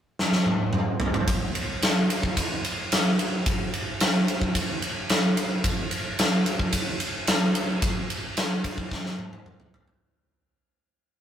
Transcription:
0.19 snare
0.32 snare
0.46 high tom
0.73 mid tom
1.00 floor tom
1.14 floor tom
1.27 kick, ride
1.55 ride
1.82 snare, ride
2.10 ride
2.23 kick
2.37 kick, ride
2.64 ride
2.92 snare, ride
3.19 ride
3.46 kick, ride
3.73 ride
4.00 snare, ride
4.28 ride
4.42 kick
4.55 kick, ride
4.82 ride
5.09 snare, ride
5.37 ride
5.64 kick, ride
5.91 ride
6.19 snare, ride
6.46 ride
6.59 kick
6.72 kick, ride
7.00 ride
7.27 snare, ride
7.55 ride
7.82 kick, ride
8.10 ride
8.37 snare, ride
8.64 kick, ride
8.78 kick
8.91 kick, snare
9.06 snare
9.19 high tom
9.33 high tom
9.46 mid tom
9.60 mid tom
9.74 floor tom
9.88 floor tom

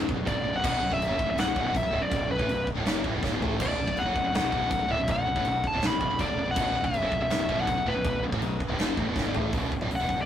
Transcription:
0.00 F#2
0.08 B0 B1 F#2, kick
0.17 B0 B1 F#2
0.26 G1 G2 D3 D5, kick, china
0.36 B0 B1 F#2
0.45 B0 B1 F#2
0.54 B0 B1 F#2 F#5
0.63 B0 B1 F#2 B2, kick, crash, china
0.82 B0 B1 F#2
0.92 B0 B1 F#2 E5, kick
1.02 china
1.09 F#1 F#2 C#3
1.19 B0 B1 F#2, kick
1.27 B0 B1 F#2 E5
1.38 B0 B1 F#2 F#5, snare, china
1.46 B0 B1 F#2
1.56 B0 B1 F#2 B2, kick
1.67 F#5
1.74 B0 B1 F#2 E5, kick, china
1.83 B0 B1 F#2
1.92 D1 D2 A2
2.02 B0 B1 F#2 D5
2.11 B0 B1 F#2, kick, china
2.29 B0 B1 F#2 B4
2.38 A1 A2 E3, kick
2.49 B0 B1 F#2, china
2.67 kick
2.75 D1 D2 A2
2.85 F#1 F#2 C#3 F#3, snare, china
3.04 A1 A2 E3, kick
3.13 E1 E2 B2
3.22 F#1 F#2 C#3, kick, snare
3.31 G1 G2 D3
3.40 A1 A2 E3 A3, floor tom
3.59 B0 B1 F#2 B2 D5, kick, crash, china
3.78 B0 B1 F#2
3.86 B0 B1 F#2, kick
3.97 F#5, china
4.05 F#1 F#2 C#3
4.15 B0 B1 F#2, kick
4.25 B0 B1 F#2
4.34 B0 B1 F#2 F#5, snare, china
4.42 B0 B1 F#2
4.51 B0 B1 F#2 B2, kick
4.69 B0 B1 F#2, kick, china
4.79 B0 B1 F#2
4.88 D1 D2 A2 E5
4.99 B0 B1 F#2
5.07 B0 B1 F#2, kick, china
5.12 F#5
5.26 B0 B1 F#2
5.36 A1 A2 E3, kick
5.45 B0 B1 F#2, china
5.64 A5, kick
5.73 D1 D2 A2
5.81 B0 B1 F#2, snare, china
5.86 B5
5.91 B0 B1 F#2
6.01 B0 B1 F#2, kick
6.10 B0 B1 F#2
6.19 G1 G2 D3 D5, kick, china
6.28 B0 B1 F#2
6.37 B0 B1 F#2
6.46 B0 B1 F#2
6.51 B1 F#5
6.55 B0 F#2 B2, kick, crash, china
6.73 B0 B1 F#2
6.84 B0 B1 F#2 E5, kick
6.94 china
7.02 F#1 F#2 C#3
7.12 B0 B1 F#2, kick
7.20 B0 B1 F#2 E5
7.29 B0 B1 F#2, snare, china
7.38 B0 B1 F#2
7.49 B0 B1 F#2 B2, kick
7.60 F#5
7.67 B0 B1 F#2, kick, china
7.76 B0 B1 F#2
7.85 D1 D2 A2 B4
7.94 B0 B1 F#2
8.04 B0 B1 F#2, kick, china
8.22 B0 B1 F#2
8.32 A1 A2 E3, kick
8.41 B0 B1 F#2, china
8.60 kick
8.68 D1 D2 A2
8.78 F#1 F#2 C#3 F#3, snare, china
8.97 A1 A2 E3, kick
9.07 E1 E2 B2
9.16 F#1 F#2 C#3, kick, snare
9.25 G1 G2 D3
9.34 A1 A2 E3 A3, floor tom
9.52 B0 B1 F#2 B2, kick, open hi-hat
9.72 B0 B1 F#2, kick
9.81 D1 D2 A2, kick
9.91 B0 B1 F#2, open hi-hat
9.96 F#5
10.00 E1 E2 B2
10.09 B0 B1 F#2, kick
10.17 B0 B1 F#2
10.21 D5

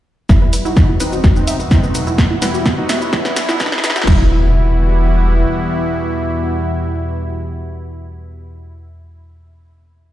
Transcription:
0.29 E1 E2 B2 E3 G3 B3 E4 F#4, kick, snare, riser, shaker
0.42 B4
0.53 B4, open hi-hat, shaker
0.65 D#4 E4 F#4, shaker
0.77 B4, kick, snare, shaker
0.89 E4
1.00 C4 D#4 B4, open hi-hat, shaker
1.12 F#4, shaker
1.24 F#1 F#3 A3 F#4, kick, snare, shaker
1.36 C4 D#4 B4, shaker
1.47 E5, open hi-hat, shaker
1.60 B4, shaker
1.71 C4 D#4 E4, kick, snare, shaker
1.83 B4, shaker
1.95 B4, open hi-hat, shaker
2.07 E4, shaker
2.18 E1 E3 G3 B3 B4, kick, snare, shaker
2.31 E4
2.42 G3 E4 B4, snare, open hi-hat, shaker
2.54 F#4, shaker
2.66 G4, kick, snare, shaker
2.78 D#4 F#4 B4
2.89 E5, snare, open hi-hat, shaker
3.01 B3 E4 B4, shaker
3.13 B1 F#3 E4, kick, snare, shaker
3.25 B4, snare, shaker
3.36 B4, snare, open hi-hat, shaker
3.49 E4, snare, shaker
3.60 B4, kick, snare, shaker
3.66 snare
3.72 E4, snare, shaker
3.78 snare
3.84 B4, snare, open hi-hat, shaker
3.90 snare
3.96 F#4, snare, shaker
4.02 snare
4.07 E1 E2 B2 E3 G3 B3 E4 F#4, kick, snare, crash, impact

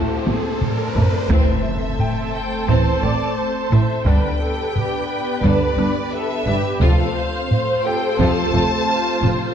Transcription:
Already playing: A3 C4 E4 A4 C5 A5, riser
0.27 A1 A2 A3 C4, taiko high
0.61 D5, taiko low-mid
0.95 A1 A2 A3 E4, taiko low
1.29 A1 A2 E3 A3 C4 A4 C5 E5, taiko, impact
1.99 G5, taiko low-mid
2.34 G5
2.68 A1 A2 E3 A3 C4 C5 A5, taiko
3.02 A1 A2 C4 D5
3.37 C5
3.71 A1 A2 C4 E4 E5, taiko low-mid
4.05 G1 G2 D3 G3 B3 D4 G4 B4 D5 G5, taiko
4.41 A4
4.74 G4, taiko low-mid
5.09 B4
5.43 G1 G2 D3 G3 B3 D4 D5, taiko
5.78 G1 G2 B3 D4
6.12 A4 E5
6.46 G1 G2 D4 G4, taiko low-mid
6.80 F1 F2 F3 A3 C4 F4 A4 C5 F5, taiko
7.15 C5
7.50 C5, taiko low-mid
7.84 G4 A4 G5
8.19 F1 F2 F3 C4 F4 A5, taiko
8.54 F1 F2 A3 F4
8.88 F4
9.22 F1 F2 C4 F4, taiko low-mid

